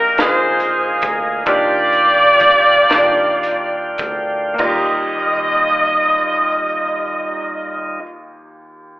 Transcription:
Already playing: fingered electric bass A#1, grand piano A#2 A#3 D#4 G4 A#4, saxophone section A#4, tonewheel organ A#4 D#5 G5
0.17 fingered electric bass A#1, grand piano A#2 A#3 D#4 F4 G#4, saxophone section D#4 G#4 C5, tonewheel organ F5 G#5, snare, closed hi-hat
0.60 closed hi-hat
1.02 fingered electric bass D2, kick, closed hi-hat
1.46 fingered electric bass D#2, grand piano D#3 D4 D#4 F4 G4, saxophone section F4 G4 D5, tonewheel organ D5 G5, kick, closed hi-hat
1.93 closed hi-hat
2.40 kick, snare, closed hi-hat
2.89 fingered electric bass D#2, grand piano D4 D#4 F4 A#4, snare, closed hi-hat
3.43 closed hi-hat
3.98 fingered electric bass D2, kick, closed hi-hat
4.54 grand piano A#3 D#4
4.58 grand piano D#2 F4, fingered electric bass D#2, tonewheel organ G3 D#4 F4 D#5, saxophone section D#5, kick, crash
4.65 grand piano G4

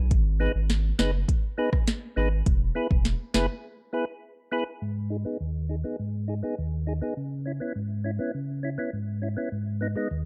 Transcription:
Already playing: sub bass B1
0.11 sub bass G#1, kick, closed hi-hat
0.40 tonewheel organ B3 D#4 G#4 B4
0.55 sub bass G#1
0.70 snare, closed hi-hat
0.99 sub bass F#1, tonewheel organ B3 D#4 G#4 B4, snare
1.28 kick, closed hi-hat
1.58 tonewheel organ B3 D#4 G#4 B4
1.73 kick, cross-stick
1.87 snare, closed hi-hat
2.16 sub bass G#1, tonewheel organ B3 D#4 G#4 B4
2.46 sub bass E1, kick, closed hi-hat
2.75 tonewheel organ B3 E4 G#4 B4
2.91 sub bass E1, kick
3.05 snare, closed hi-hat
3.34 sub bass F#1, tonewheel organ B3 E4 G#4 B4, snare
3.93 tonewheel organ B3 E4 G#4 B4
4.52 tonewheel organ B3 E4 G#4 B4
4.82 tonewheel organ G#2
5.10 tonewheel organ D#4 G#4
5.25 tonewheel organ B3 D#4 G#4
5.40 tonewheel organ D#2
5.69 tonewheel organ D#4 G#4
5.84 tonewheel organ B3 D#4 G#4
5.99 tonewheel organ G#2
6.28 tonewheel organ D#4 G#4
6.43 tonewheel organ B3 D#4 G#4
6.58 tonewheel organ D#2
6.87 tonewheel organ D#4 G#4
7.02 tonewheel organ B3 D#4 G#4
7.17 tonewheel organ C#3
7.46 tonewheel organ C#4 E4
7.60 tonewheel organ B3 C#4 E4
7.76 tonewheel organ G#2
8.04 tonewheel organ C#4 E4
8.19 tonewheel organ B3 C#4 E4
8.34 tonewheel organ C#3
8.63 tonewheel organ C#4 E4
8.78 tonewheel organ B3 C#4 E4
8.93 tonewheel organ G#2
9.22 tonewheel organ C#4 E4
9.37 tonewheel organ B3 C#4 E4
9.52 tonewheel organ G#2
9.81 tonewheel organ B3 D#4
9.96 tonewheel organ G#3 B3 D#4
10.11 tonewheel organ D#2

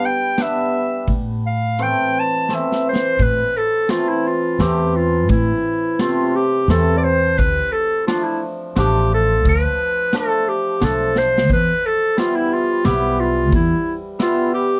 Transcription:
Already playing: hammered dulcimer G3
0.05 clarinet G5
0.37 hammered dulcimer G3 B3 D4, snare, ride
0.42 clarinet E5
1.07 upright bass A2, kick, ride
1.46 clarinet F5
1.79 hammered dulcimer E3 A3 C4, clarinet G5, ride
2.20 clarinet A5
2.49 hammered dulcimer E3 A3 C4, snare
2.55 clarinet E5
2.72 snare
2.89 clarinet C5
2.96 snare
3.19 upright bass A2, clarinet B4, kick, ride
3.57 clarinet A4
3.89 hammered dulcimer E3 A3 C4, clarinet F4, snare, ride
4.09 clarinet E4
4.28 clarinet F4
4.59 upright bass E2, hammered dulcimer E3 A3 C4, clarinet G4, snare, ride
4.96 clarinet F4
5.29 upright bass A2, clarinet E4, kick, ride
5.99 hammered dulcimer C3 A3 C4, clarinet F4, snare, ride
6.36 clarinet G4
6.68 upright bass E2, hammered dulcimer E3 A3 C4, clarinet A4, snare, ride
6.97 clarinet D5
7.04 clarinet C5
7.38 upright bass D2, clarinet B4, kick, ride
7.72 clarinet A4
8.07 hammered dulcimer F3 A3 D4, clarinet F4, snare, ride
8.24 clarinet E4
8.76 upright bass A1, hammered dulcimer F3 A3 D4, clarinet G4, snare, ride
9.14 clarinet A4
9.45 upright bass D2, clarinet B4, kick, ride
10.13 hammered dulcimer F3 A3 D4, clarinet A4, snare, ride
10.48 clarinet G4
10.81 upright bass B1, hammered dulcimer F3 A3 D4, clarinet A4, snare, ride
11.16 clarinet C5, snare
11.38 snare
11.49 upright bass E2, kick, ride
11.53 clarinet B4
11.86 clarinet A4
12.17 hammered dulcimer G3 B3 E4, clarinet F4, snare, ride
12.36 clarinet E4
12.54 clarinet F4
12.84 upright bass B1, hammered dulcimer G3 B3 E4, clarinet G4, snare, ride
13.20 clarinet F4
13.52 upright bass E2, clarinet E4, kick, ride
14.19 hammered dulcimer G3 B3 E5, clarinet F4, snare, ride
14.54 clarinet G4

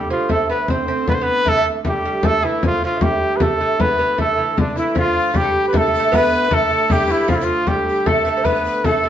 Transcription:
Already playing: hurdy-gurdy D3 A3, trumpet G4
0.10 lute F3, trumpet F4, frame drum
0.29 hurdy-gurdy D3 A3, lute A3, trumpet A4, frame drum
0.49 lute B3, trumpet B4
0.68 lute C4, trumpet C5, frame drum
0.88 lute C4
1.07 lute B3, trumpet B4, frame drum
1.14 trumpet C5
1.21 lute B3, trumpet B4
1.27 frame drum
1.45 lute A3, trumpet A4, frame drum
1.52 lute A3
1.57 lute A3
1.85 lute G3, trumpet G4, frame drum
2.05 lute G3
2.23 lute A3, trumpet A4, frame drum
2.43 lute E3, trumpet E4, frame drum
2.63 lute F3, trumpet F4, frame drum
2.84 lute F3, trumpet F4
2.96 lute A3
3.01 lute G3, trumpet G4, frame drum
3.37 trumpet B4, frame drum
3.41 lute A3, trumpet A4
3.60 lute A3, frame drum
3.80 lute B3, trumpet B4, frame drum
3.99 lute B3
4.18 lute A3, trumpet A4, frame drum
4.37 lute E3
4.57 lute D3, trumpet D4, frame drum
4.75 lute E3, recorder E4, trumpet E4, frame drum
4.95 hurdy-gurdy D3 A3, lute F3, recorder F4, frame drum
4.99 trumpet F4
5.34 lute G3, recorder G4, trumpet G4, frame drum
5.44 recorder A4
5.51 recorder G4
5.68 trumpet B4
5.73 lute A3, recorder A4, frame drum
5.77 trumpet A4
5.87 lute A3
5.94 recorder A4, frame drum
6.00 lute A3
6.12 lute B3, recorder B4, trumpet B4, frame drum
6.45 recorder B4
6.51 lute A3, recorder A4, trumpet A4, frame drum
6.71 lute A3
6.90 lute G3, recorder G4, trumpet G4, frame drum
7.08 lute E3, trumpet E4, frame drum
7.28 lute F3, recorder F4, trumpet F4, frame drum
7.36 trumpet E4
7.41 lute F3, recorder F4, trumpet F4
7.67 lute G3, recorder G4, trumpet G4, frame drum
7.88 recorder G4
8.06 lute A3, trumpet A4, recorder A4, frame drum
8.25 lute A3, recorder B4, frame drum
8.29 recorder A4
8.37 lute C4
8.45 lute B3, trumpet B4, recorder B4, frame drum
8.65 recorder B4, frame drum
8.84 lute A3, recorder A4, trumpet A4, frame drum
9.04 lute A3

